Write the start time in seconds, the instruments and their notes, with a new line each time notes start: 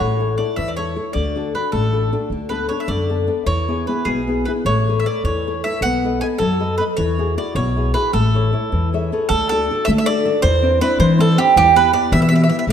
0.00 upright bass A1, nylon-string guitar A3, mandolin C#5
0.20 nylon-string guitar E4 A4 C#5
0.38 nylon-string guitar E4 A4 C#5, mandolin D5
0.56 upright bass E2, nylon-string guitar E3, mandolin E5
0.68 mandolin D5
0.77 nylon-string guitar E4 A4 C#5, mandolin C#5
0.96 nylon-string guitar E4 A4 C#5
1.13 upright bass D2, nylon-string guitar D3, mandolin D5
1.36 nylon-string guitar D4 F#4 A4
1.55 nylon-string guitar D4 F#4 A4, mandolin B4
1.72 upright bass A1, nylon-string guitar A3, mandolin A4
1.93 nylon-string guitar D4 F#4 A4
2.12 nylon-string guitar D4 F#4 A4
2.30 upright bass D2, nylon-string guitar D3
2.49 nylon-string guitar B3 D4 A4, mandolin B4
2.69 nylon-string guitar B3 D4 A4, mandolin C#5
2.80 mandolin E5
2.88 upright bass F#2, nylon-string guitar D3, mandolin D5
3.10 nylon-string guitar B3 D4 A4
3.27 nylon-string guitar B3 D4 A4
3.46 upright bass E2, nylon-string guitar E3, mandolin C#5
3.68 nylon-string guitar B3 E4 G#4
3.87 nylon-string guitar B3 E4 G#4, mandolin B4
4.05 upright bass B1, nylon-string guitar B2, mandolin G#4
4.28 nylon-string guitar B3 E4 G#4
4.45 nylon-string guitar B3 E4 G#4, mandolin B4
4.65 upright bass A1, nylon-string guitar A3, mandolin C#5
4.88 nylon-string guitar A4 B4 C#5
5.00 mandolin E5
5.06 nylon-string guitar A4 B4 C#5, mandolin D5
5.24 upright bass E2, nylon-string guitar E3, mandolin C#5
5.47 nylon-string guitar A4 B4 C#5
5.64 nylon-string guitar A4 B4 C#5, mandolin E5
5.81 upright bass B1, nylon-string guitar B3, mandolin F#5
6.04 nylon-string guitar A4 B4 D#5
6.21 nylon-string guitar A4 B4 D#5, mandolin G#5
6.38 upright bass F#2, nylon-string guitar F#3, mandolin A4
6.60 nylon-string guitar A4 B4 D#5
6.78 nylon-string guitar A4 B4 D#5, mandolin B4
6.97 upright bass E2, nylon-string guitar E3, mandolin C#5
7.18 nylon-string guitar E4 F#4 G#4
7.37 nylon-string guitar E4 F#4 G#4, mandolin D5
7.55 upright bass B1, nylon-string guitar B2, mandolin C#5
7.76 nylon-string guitar E4 F#4 G#4
7.94 nylon-string guitar E4 F#4 G#4, mandolin B4
8.13 upright bass A1, nylon-string guitar A3, mandolin A4
8.34 nylon-string guitar E4 A4 C#5
8.53 nylon-string guitar E4 A4 C#5
8.72 upright bass E2, nylon-string guitar E3
8.93 nylon-string guitar G#4 A4 C#5 E5
9.12 nylon-string guitar G#4 A4 B4 C#5
9.29 upright bass D2, nylon-string guitar D3, mandolin A4
9.49 nylon-string guitar D4 F#4 A4, mandolin A4
9.71 nylon-string guitar D4 F#4 A4
9.85 upright bass D3, nylon-string guitar A3, mandolin E5
9.98 mandolin E5
10.06 nylon-string guitar D4 F#4 A4, mandolin D5
10.25 nylon-string guitar D4 F#4 A4
10.42 upright bass E2, nylon-string guitar E3, mandolin C5
10.62 nylon-string guitar C4 D4 E4
10.81 nylon-string guitar C4 D4 E4, mandolin B4
10.99 upright bass E3, nylon-string guitar E3, mandolin C5
11.18 nylon-string guitar C4 D4 E4, mandolin A4
11.38 nylon-string guitar C4 D4 E4, mandolin G4
11.56 upright bass E2, nylon-string guitar E3, mandolin G4
11.75 nylon-string guitar B3 E4 G4, mandolin B4
11.93 nylon-string guitar B3 E4 G4, mandolin D5
12.12 nylon-string guitar B2, upright bass E3, mandolin E5
12.22 mandolin E5
12.29 nylon-string guitar B3 E4 G4, mandolin E5
12.35 mandolin E5
12.44 mandolin E5
12.49 nylon-string guitar B3 E4 G4, mandolin E5
12.59 mandolin E5
12.67 upright bass A1, nylon-string guitar A3